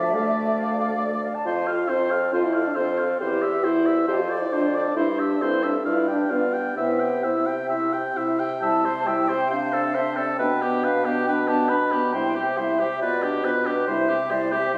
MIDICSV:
0, 0, Header, 1, 6, 480
1, 0, Start_track
1, 0, Key_signature, 0, "major"
1, 0, Tempo, 437956
1, 1594, Time_signature, 4, 2, 24, 8
1, 5436, Tempo, 456969
1, 9276, Tempo, 444115
1, 11676, Tempo, 433213
1, 16045, End_track
2, 0, Start_track
2, 0, Title_t, "Flute"
2, 0, Program_c, 0, 73
2, 0, Note_on_c, 0, 76, 55
2, 637, Note_on_c, 0, 77, 52
2, 653, Note_off_c, 0, 76, 0
2, 1110, Note_on_c, 0, 74, 53
2, 1127, Note_off_c, 0, 77, 0
2, 1583, Note_off_c, 0, 74, 0
2, 1590, Note_on_c, 0, 72, 47
2, 2705, Note_off_c, 0, 72, 0
2, 3030, Note_on_c, 0, 69, 56
2, 3510, Note_on_c, 0, 71, 47
2, 3526, Note_off_c, 0, 69, 0
2, 3991, Note_on_c, 0, 72, 63
2, 4007, Note_off_c, 0, 71, 0
2, 5428, Note_off_c, 0, 72, 0
2, 5435, Note_on_c, 0, 67, 54
2, 5909, Note_on_c, 0, 69, 51
2, 5925, Note_off_c, 0, 67, 0
2, 6382, Note_on_c, 0, 71, 50
2, 6397, Note_off_c, 0, 69, 0
2, 6854, Note_on_c, 0, 74, 55
2, 6870, Note_off_c, 0, 71, 0
2, 7337, Note_off_c, 0, 74, 0
2, 7343, Note_on_c, 0, 76, 50
2, 9007, Note_off_c, 0, 76, 0
2, 9267, Note_on_c, 0, 81, 59
2, 9760, Note_on_c, 0, 79, 54
2, 9777, Note_off_c, 0, 81, 0
2, 10245, Note_on_c, 0, 77, 63
2, 10261, Note_off_c, 0, 79, 0
2, 10722, Note_on_c, 0, 76, 61
2, 10738, Note_off_c, 0, 77, 0
2, 10940, Note_off_c, 0, 76, 0
2, 10947, Note_on_c, 0, 74, 55
2, 11188, Note_off_c, 0, 74, 0
2, 11193, Note_on_c, 0, 79, 55
2, 11665, Note_off_c, 0, 79, 0
2, 11673, Note_on_c, 0, 77, 64
2, 11906, Note_on_c, 0, 79, 59
2, 11923, Note_off_c, 0, 77, 0
2, 12146, Note_off_c, 0, 79, 0
2, 12152, Note_on_c, 0, 79, 63
2, 12219, Note_off_c, 0, 79, 0
2, 12385, Note_on_c, 0, 81, 71
2, 12628, Note_on_c, 0, 83, 73
2, 12644, Note_off_c, 0, 81, 0
2, 13112, Note_on_c, 0, 79, 66
2, 13129, Note_off_c, 0, 83, 0
2, 13604, Note_on_c, 0, 76, 62
2, 13620, Note_off_c, 0, 79, 0
2, 14074, Note_off_c, 0, 76, 0
2, 14080, Note_on_c, 0, 74, 67
2, 14341, Note_off_c, 0, 74, 0
2, 14555, Note_on_c, 0, 72, 65
2, 14622, Note_off_c, 0, 72, 0
2, 14792, Note_on_c, 0, 71, 56
2, 15042, Note_on_c, 0, 76, 58
2, 15059, Note_off_c, 0, 71, 0
2, 15528, Note_on_c, 0, 74, 70
2, 15544, Note_off_c, 0, 76, 0
2, 15757, Note_off_c, 0, 74, 0
2, 15763, Note_on_c, 0, 76, 64
2, 15992, Note_off_c, 0, 76, 0
2, 15998, Note_on_c, 0, 76, 65
2, 16045, Note_off_c, 0, 76, 0
2, 16045, End_track
3, 0, Start_track
3, 0, Title_t, "Oboe"
3, 0, Program_c, 1, 68
3, 0, Note_on_c, 1, 74, 41
3, 1407, Note_off_c, 1, 74, 0
3, 1593, Note_on_c, 1, 72, 43
3, 1832, Note_on_c, 1, 77, 40
3, 1849, Note_off_c, 1, 72, 0
3, 2070, Note_on_c, 1, 72, 44
3, 2087, Note_off_c, 1, 77, 0
3, 2313, Note_on_c, 1, 77, 43
3, 2330, Note_off_c, 1, 72, 0
3, 2547, Note_off_c, 1, 77, 0
3, 2554, Note_on_c, 1, 72, 45
3, 2785, Note_on_c, 1, 77, 47
3, 2801, Note_off_c, 1, 72, 0
3, 3021, Note_on_c, 1, 72, 48
3, 3038, Note_off_c, 1, 77, 0
3, 3273, Note_on_c, 1, 77, 43
3, 3289, Note_off_c, 1, 72, 0
3, 3505, Note_off_c, 1, 77, 0
3, 3512, Note_on_c, 1, 72, 45
3, 3747, Note_on_c, 1, 76, 42
3, 3763, Note_off_c, 1, 72, 0
3, 3994, Note_on_c, 1, 72, 48
3, 4010, Note_off_c, 1, 76, 0
3, 4232, Note_on_c, 1, 76, 52
3, 4248, Note_off_c, 1, 72, 0
3, 4463, Note_off_c, 1, 76, 0
3, 4470, Note_on_c, 1, 72, 45
3, 4711, Note_on_c, 1, 74, 42
3, 4728, Note_off_c, 1, 72, 0
3, 4962, Note_on_c, 1, 72, 43
3, 4979, Note_off_c, 1, 74, 0
3, 5202, Note_on_c, 1, 74, 43
3, 5219, Note_off_c, 1, 72, 0
3, 5438, Note_off_c, 1, 74, 0
3, 5444, Note_on_c, 1, 72, 52
3, 5685, Note_on_c, 1, 76, 44
3, 5701, Note_off_c, 1, 72, 0
3, 5915, Note_on_c, 1, 72, 51
3, 5931, Note_off_c, 1, 76, 0
3, 6143, Note_on_c, 1, 76, 43
3, 6159, Note_off_c, 1, 72, 0
3, 6371, Note_off_c, 1, 76, 0
3, 6377, Note_on_c, 1, 77, 42
3, 6612, Note_on_c, 1, 79, 39
3, 6627, Note_off_c, 1, 77, 0
3, 6843, Note_on_c, 1, 77, 40
3, 6859, Note_off_c, 1, 79, 0
3, 7087, Note_on_c, 1, 79, 35
3, 7103, Note_off_c, 1, 77, 0
3, 7330, Note_off_c, 1, 79, 0
3, 7336, Note_on_c, 1, 76, 39
3, 7578, Note_on_c, 1, 79, 36
3, 7594, Note_off_c, 1, 76, 0
3, 7827, Note_on_c, 1, 76, 40
3, 7843, Note_off_c, 1, 79, 0
3, 8067, Note_on_c, 1, 79, 37
3, 8083, Note_off_c, 1, 76, 0
3, 8298, Note_off_c, 1, 79, 0
3, 8304, Note_on_c, 1, 76, 39
3, 8553, Note_on_c, 1, 79, 37
3, 8569, Note_off_c, 1, 76, 0
3, 8808, Note_on_c, 1, 76, 34
3, 8824, Note_off_c, 1, 79, 0
3, 9044, Note_on_c, 1, 79, 36
3, 9059, Note_off_c, 1, 76, 0
3, 9275, Note_off_c, 1, 79, 0
3, 9281, Note_on_c, 1, 76, 43
3, 9532, Note_on_c, 1, 72, 38
3, 9548, Note_off_c, 1, 76, 0
3, 9770, Note_on_c, 1, 76, 43
3, 9786, Note_off_c, 1, 72, 0
3, 10004, Note_on_c, 1, 72, 38
3, 10020, Note_off_c, 1, 76, 0
3, 10229, Note_off_c, 1, 72, 0
3, 10235, Note_on_c, 1, 72, 40
3, 10480, Note_on_c, 1, 69, 40
3, 10496, Note_off_c, 1, 72, 0
3, 10714, Note_on_c, 1, 72, 36
3, 10730, Note_off_c, 1, 69, 0
3, 10949, Note_on_c, 1, 69, 39
3, 10965, Note_off_c, 1, 72, 0
3, 11184, Note_off_c, 1, 69, 0
3, 11190, Note_on_c, 1, 71, 43
3, 11440, Note_on_c, 1, 67, 42
3, 11457, Note_off_c, 1, 71, 0
3, 11682, Note_on_c, 1, 71, 44
3, 11699, Note_off_c, 1, 67, 0
3, 11916, Note_on_c, 1, 67, 39
3, 11933, Note_off_c, 1, 71, 0
3, 12159, Note_off_c, 1, 67, 0
3, 12164, Note_on_c, 1, 71, 41
3, 12384, Note_on_c, 1, 67, 38
3, 12401, Note_off_c, 1, 71, 0
3, 12623, Note_on_c, 1, 71, 42
3, 12640, Note_off_c, 1, 67, 0
3, 12874, Note_on_c, 1, 67, 40
3, 12890, Note_off_c, 1, 71, 0
3, 13110, Note_off_c, 1, 67, 0
3, 13117, Note_on_c, 1, 72, 46
3, 13356, Note_on_c, 1, 67, 39
3, 13373, Note_off_c, 1, 72, 0
3, 13599, Note_on_c, 1, 72, 44
3, 13615, Note_off_c, 1, 67, 0
3, 13848, Note_on_c, 1, 67, 45
3, 13864, Note_off_c, 1, 72, 0
3, 14085, Note_off_c, 1, 67, 0
3, 14089, Note_on_c, 1, 71, 42
3, 14323, Note_on_c, 1, 67, 42
3, 14340, Note_off_c, 1, 71, 0
3, 14567, Note_on_c, 1, 71, 42
3, 14583, Note_off_c, 1, 67, 0
3, 14804, Note_on_c, 1, 67, 42
3, 14820, Note_off_c, 1, 71, 0
3, 15036, Note_off_c, 1, 67, 0
3, 15043, Note_on_c, 1, 72, 44
3, 15283, Note_on_c, 1, 67, 39
3, 15300, Note_off_c, 1, 72, 0
3, 15523, Note_on_c, 1, 72, 45
3, 15539, Note_off_c, 1, 67, 0
3, 15764, Note_on_c, 1, 67, 51
3, 15780, Note_off_c, 1, 72, 0
3, 15995, Note_off_c, 1, 67, 0
3, 16002, Note_on_c, 1, 72, 45
3, 16045, Note_off_c, 1, 72, 0
3, 16045, End_track
4, 0, Start_track
4, 0, Title_t, "Clarinet"
4, 0, Program_c, 2, 71
4, 43, Note_on_c, 2, 81, 43
4, 160, Note_on_c, 2, 77, 43
4, 177, Note_off_c, 2, 81, 0
4, 280, Note_on_c, 2, 74, 39
4, 297, Note_off_c, 2, 77, 0
4, 396, Note_on_c, 2, 69, 41
4, 413, Note_off_c, 2, 74, 0
4, 524, Note_on_c, 2, 74, 38
4, 540, Note_off_c, 2, 69, 0
4, 635, Note_off_c, 2, 74, 0
4, 642, Note_on_c, 2, 77, 45
4, 763, Note_on_c, 2, 81, 41
4, 779, Note_off_c, 2, 77, 0
4, 881, Note_on_c, 2, 77, 45
4, 897, Note_off_c, 2, 81, 0
4, 1006, Note_on_c, 2, 74, 40
4, 1022, Note_off_c, 2, 77, 0
4, 1120, Note_on_c, 2, 69, 42
4, 1136, Note_off_c, 2, 74, 0
4, 1244, Note_on_c, 2, 74, 43
4, 1261, Note_off_c, 2, 69, 0
4, 1368, Note_on_c, 2, 77, 43
4, 1385, Note_off_c, 2, 74, 0
4, 1479, Note_on_c, 2, 81, 44
4, 1495, Note_off_c, 2, 77, 0
4, 1596, Note_off_c, 2, 81, 0
4, 1605, Note_on_c, 2, 65, 46
4, 1845, Note_on_c, 2, 69, 43
4, 1861, Note_off_c, 2, 65, 0
4, 2075, Note_on_c, 2, 65, 49
4, 2092, Note_off_c, 2, 69, 0
4, 2324, Note_on_c, 2, 69, 43
4, 2341, Note_off_c, 2, 65, 0
4, 2554, Note_off_c, 2, 69, 0
4, 2561, Note_on_c, 2, 65, 44
4, 2797, Note_on_c, 2, 69, 46
4, 2814, Note_off_c, 2, 65, 0
4, 3032, Note_on_c, 2, 65, 44
4, 3049, Note_off_c, 2, 69, 0
4, 3280, Note_on_c, 2, 69, 45
4, 3296, Note_off_c, 2, 65, 0
4, 3515, Note_off_c, 2, 69, 0
4, 3521, Note_on_c, 2, 64, 47
4, 3760, Note_on_c, 2, 67, 42
4, 3777, Note_off_c, 2, 64, 0
4, 4003, Note_on_c, 2, 64, 46
4, 4020, Note_off_c, 2, 67, 0
4, 4242, Note_on_c, 2, 67, 43
4, 4258, Note_off_c, 2, 64, 0
4, 4478, Note_off_c, 2, 67, 0
4, 4490, Note_on_c, 2, 65, 46
4, 4720, Note_on_c, 2, 69, 43
4, 4736, Note_off_c, 2, 65, 0
4, 4955, Note_on_c, 2, 65, 46
4, 4972, Note_off_c, 2, 69, 0
4, 5199, Note_on_c, 2, 69, 46
4, 5215, Note_off_c, 2, 65, 0
4, 5432, Note_off_c, 2, 69, 0
4, 5438, Note_on_c, 2, 64, 46
4, 5674, Note_on_c, 2, 67, 43
4, 5689, Note_off_c, 2, 64, 0
4, 5915, Note_on_c, 2, 64, 50
4, 5931, Note_off_c, 2, 67, 0
4, 6146, Note_on_c, 2, 67, 43
4, 6161, Note_off_c, 2, 64, 0
4, 6375, Note_off_c, 2, 67, 0
4, 6382, Note_on_c, 2, 65, 42
4, 6608, Note_on_c, 2, 67, 42
4, 6623, Note_off_c, 2, 65, 0
4, 6847, Note_on_c, 2, 65, 42
4, 6863, Note_off_c, 2, 67, 0
4, 7085, Note_on_c, 2, 67, 39
4, 7101, Note_off_c, 2, 65, 0
4, 7323, Note_off_c, 2, 67, 0
4, 7329, Note_on_c, 2, 64, 39
4, 7577, Note_on_c, 2, 67, 36
4, 7593, Note_off_c, 2, 64, 0
4, 7828, Note_on_c, 2, 64, 44
4, 7844, Note_off_c, 2, 67, 0
4, 8071, Note_on_c, 2, 67, 38
4, 8086, Note_off_c, 2, 64, 0
4, 8311, Note_off_c, 2, 67, 0
4, 8315, Note_on_c, 2, 64, 37
4, 8551, Note_on_c, 2, 67, 39
4, 8567, Note_off_c, 2, 64, 0
4, 8800, Note_on_c, 2, 64, 39
4, 8815, Note_off_c, 2, 67, 0
4, 9042, Note_on_c, 2, 67, 35
4, 9058, Note_off_c, 2, 64, 0
4, 9279, Note_off_c, 2, 67, 0
4, 9288, Note_on_c, 2, 64, 38
4, 9532, Note_on_c, 2, 67, 35
4, 9548, Note_off_c, 2, 64, 0
4, 9774, Note_on_c, 2, 64, 41
4, 9790, Note_off_c, 2, 67, 0
4, 10012, Note_on_c, 2, 67, 37
4, 10028, Note_off_c, 2, 64, 0
4, 10246, Note_off_c, 2, 67, 0
4, 10254, Note_on_c, 2, 62, 35
4, 10487, Note_on_c, 2, 60, 39
4, 10503, Note_off_c, 2, 62, 0
4, 10727, Note_on_c, 2, 62, 39
4, 10744, Note_off_c, 2, 60, 0
4, 10963, Note_on_c, 2, 60, 38
4, 10979, Note_off_c, 2, 62, 0
4, 11198, Note_off_c, 2, 60, 0
4, 11204, Note_on_c, 2, 62, 39
4, 11437, Note_on_c, 2, 59, 37
4, 11453, Note_off_c, 2, 62, 0
4, 11676, Note_on_c, 2, 62, 39
4, 11693, Note_off_c, 2, 59, 0
4, 11920, Note_on_c, 2, 59, 41
4, 11937, Note_off_c, 2, 62, 0
4, 12158, Note_off_c, 2, 59, 0
4, 12164, Note_on_c, 2, 62, 40
4, 12397, Note_on_c, 2, 59, 40
4, 12414, Note_off_c, 2, 62, 0
4, 12640, Note_on_c, 2, 62, 44
4, 12656, Note_off_c, 2, 59, 0
4, 12878, Note_on_c, 2, 59, 40
4, 12894, Note_off_c, 2, 62, 0
4, 13120, Note_off_c, 2, 59, 0
4, 13124, Note_on_c, 2, 64, 46
4, 13371, Note_on_c, 2, 67, 40
4, 13387, Note_off_c, 2, 64, 0
4, 13607, Note_on_c, 2, 64, 44
4, 13624, Note_off_c, 2, 67, 0
4, 13847, Note_on_c, 2, 67, 39
4, 13863, Note_off_c, 2, 64, 0
4, 14081, Note_off_c, 2, 67, 0
4, 14088, Note_on_c, 2, 65, 40
4, 14324, Note_on_c, 2, 67, 44
4, 14340, Note_off_c, 2, 65, 0
4, 14573, Note_on_c, 2, 65, 42
4, 14590, Note_off_c, 2, 67, 0
4, 14806, Note_on_c, 2, 67, 43
4, 14823, Note_off_c, 2, 65, 0
4, 15046, Note_off_c, 2, 67, 0
4, 15054, Note_on_c, 2, 64, 49
4, 15287, Note_on_c, 2, 67, 43
4, 15304, Note_off_c, 2, 64, 0
4, 15526, Note_on_c, 2, 64, 45
4, 15543, Note_off_c, 2, 67, 0
4, 15760, Note_on_c, 2, 67, 40
4, 15777, Note_off_c, 2, 64, 0
4, 15993, Note_off_c, 2, 67, 0
4, 16000, Note_on_c, 2, 64, 41
4, 16045, Note_off_c, 2, 64, 0
4, 16045, End_track
5, 0, Start_track
5, 0, Title_t, "French horn"
5, 0, Program_c, 3, 60
5, 0, Note_on_c, 3, 53, 63
5, 161, Note_on_c, 3, 57, 66
5, 178, Note_off_c, 3, 53, 0
5, 1358, Note_off_c, 3, 57, 0
5, 1600, Note_on_c, 3, 65, 74
5, 2077, Note_on_c, 3, 60, 62
5, 2094, Note_off_c, 3, 65, 0
5, 2558, Note_on_c, 3, 65, 75
5, 2575, Note_off_c, 3, 60, 0
5, 2680, Note_on_c, 3, 64, 62
5, 2696, Note_off_c, 3, 65, 0
5, 2914, Note_off_c, 3, 64, 0
5, 2926, Note_on_c, 3, 62, 58
5, 2976, Note_off_c, 3, 62, 0
5, 3035, Note_on_c, 3, 60, 72
5, 3503, Note_off_c, 3, 60, 0
5, 3514, Note_on_c, 3, 67, 84
5, 3992, Note_on_c, 3, 64, 79
5, 4009, Note_off_c, 3, 67, 0
5, 4474, Note_off_c, 3, 64, 0
5, 4478, Note_on_c, 3, 67, 86
5, 4600, Note_on_c, 3, 65, 61
5, 4617, Note_off_c, 3, 67, 0
5, 4835, Note_off_c, 3, 65, 0
5, 4845, Note_on_c, 3, 64, 67
5, 4896, Note_off_c, 3, 64, 0
5, 4958, Note_on_c, 3, 62, 75
5, 5431, Note_off_c, 3, 62, 0
5, 5442, Note_on_c, 3, 64, 80
5, 5547, Note_off_c, 3, 64, 0
5, 5678, Note_on_c, 3, 62, 64
5, 5914, Note_on_c, 3, 60, 71
5, 5930, Note_off_c, 3, 62, 0
5, 6141, Note_off_c, 3, 60, 0
5, 6147, Note_on_c, 3, 62, 62
5, 6252, Note_off_c, 3, 62, 0
5, 6378, Note_on_c, 3, 64, 71
5, 6617, Note_on_c, 3, 62, 64
5, 6633, Note_off_c, 3, 64, 0
5, 6857, Note_on_c, 3, 59, 61
5, 6873, Note_off_c, 3, 62, 0
5, 7338, Note_off_c, 3, 59, 0
5, 7345, Note_on_c, 3, 59, 71
5, 7835, Note_on_c, 3, 60, 53
5, 7850, Note_off_c, 3, 59, 0
5, 8799, Note_off_c, 3, 60, 0
5, 9277, Note_on_c, 3, 55, 41
5, 9519, Note_on_c, 3, 60, 36
5, 9535, Note_off_c, 3, 55, 0
5, 9764, Note_on_c, 3, 55, 38
5, 9780, Note_off_c, 3, 60, 0
5, 10008, Note_on_c, 3, 60, 39
5, 10024, Note_off_c, 3, 55, 0
5, 10240, Note_off_c, 3, 60, 0
5, 10246, Note_on_c, 3, 60, 40
5, 10486, Note_on_c, 3, 62, 42
5, 10502, Note_off_c, 3, 60, 0
5, 10718, Note_on_c, 3, 60, 41
5, 10734, Note_off_c, 3, 62, 0
5, 10964, Note_on_c, 3, 62, 37
5, 10980, Note_off_c, 3, 60, 0
5, 11195, Note_off_c, 3, 62, 0
5, 11202, Note_on_c, 3, 59, 41
5, 11441, Note_on_c, 3, 62, 35
5, 11457, Note_off_c, 3, 59, 0
5, 11675, Note_on_c, 3, 59, 41
5, 11692, Note_off_c, 3, 62, 0
5, 11919, Note_on_c, 3, 62, 36
5, 11936, Note_off_c, 3, 59, 0
5, 12156, Note_off_c, 3, 62, 0
5, 12163, Note_on_c, 3, 59, 39
5, 12396, Note_on_c, 3, 62, 42
5, 12413, Note_off_c, 3, 59, 0
5, 12632, Note_on_c, 3, 59, 43
5, 12648, Note_off_c, 3, 62, 0
5, 12875, Note_on_c, 3, 62, 42
5, 12892, Note_off_c, 3, 59, 0
5, 13111, Note_off_c, 3, 62, 0
5, 13118, Note_on_c, 3, 55, 46
5, 13360, Note_on_c, 3, 60, 41
5, 13377, Note_off_c, 3, 55, 0
5, 13607, Note_on_c, 3, 55, 44
5, 13623, Note_off_c, 3, 60, 0
5, 13847, Note_on_c, 3, 60, 40
5, 13864, Note_off_c, 3, 55, 0
5, 14080, Note_off_c, 3, 60, 0
5, 14087, Note_on_c, 3, 59, 43
5, 14325, Note_on_c, 3, 62, 40
5, 14342, Note_off_c, 3, 59, 0
5, 14566, Note_on_c, 3, 59, 42
5, 14583, Note_off_c, 3, 62, 0
5, 14814, Note_on_c, 3, 62, 38
5, 14831, Note_off_c, 3, 59, 0
5, 15040, Note_off_c, 3, 62, 0
5, 15047, Note_on_c, 3, 55, 49
5, 15291, Note_on_c, 3, 60, 41
5, 15307, Note_off_c, 3, 55, 0
5, 15527, Note_on_c, 3, 55, 41
5, 15544, Note_off_c, 3, 60, 0
5, 15760, Note_on_c, 3, 60, 42
5, 15777, Note_off_c, 3, 55, 0
5, 15992, Note_off_c, 3, 60, 0
5, 15999, Note_on_c, 3, 55, 45
5, 16045, Note_off_c, 3, 55, 0
5, 16045, End_track
6, 0, Start_track
6, 0, Title_t, "Bassoon"
6, 0, Program_c, 4, 70
6, 0, Note_on_c, 4, 38, 50
6, 1410, Note_off_c, 4, 38, 0
6, 1596, Note_on_c, 4, 41, 56
6, 2018, Note_off_c, 4, 41, 0
6, 2074, Note_on_c, 4, 41, 51
6, 2497, Note_off_c, 4, 41, 0
6, 2553, Note_on_c, 4, 41, 56
6, 2973, Note_off_c, 4, 41, 0
6, 3033, Note_on_c, 4, 41, 53
6, 3455, Note_off_c, 4, 41, 0
6, 3511, Note_on_c, 4, 40, 59
6, 3936, Note_off_c, 4, 40, 0
6, 3992, Note_on_c, 4, 40, 54
6, 4417, Note_off_c, 4, 40, 0
6, 4468, Note_on_c, 4, 41, 62
6, 4892, Note_off_c, 4, 41, 0
6, 4949, Note_on_c, 4, 41, 56
6, 5378, Note_off_c, 4, 41, 0
6, 5437, Note_on_c, 4, 43, 61
6, 5853, Note_off_c, 4, 43, 0
6, 5906, Note_on_c, 4, 43, 52
6, 6322, Note_off_c, 4, 43, 0
6, 6380, Note_on_c, 4, 43, 59
6, 6796, Note_off_c, 4, 43, 0
6, 6847, Note_on_c, 4, 43, 47
6, 7276, Note_off_c, 4, 43, 0
6, 7334, Note_on_c, 4, 48, 52
6, 7767, Note_off_c, 4, 48, 0
6, 7823, Note_on_c, 4, 48, 44
6, 8252, Note_off_c, 4, 48, 0
6, 8311, Note_on_c, 4, 48, 50
6, 8668, Note_off_c, 4, 48, 0
6, 8796, Note_on_c, 4, 48, 48
6, 9221, Note_off_c, 4, 48, 0
6, 9281, Note_on_c, 4, 48, 52
6, 11156, Note_off_c, 4, 48, 0
6, 11194, Note_on_c, 4, 47, 54
6, 13120, Note_on_c, 4, 48, 50
6, 13136, Note_off_c, 4, 47, 0
6, 14081, Note_on_c, 4, 47, 52
6, 14097, Note_off_c, 4, 48, 0
6, 15036, Note_off_c, 4, 47, 0
6, 15042, Note_on_c, 4, 48, 56
6, 16045, Note_off_c, 4, 48, 0
6, 16045, End_track
0, 0, End_of_file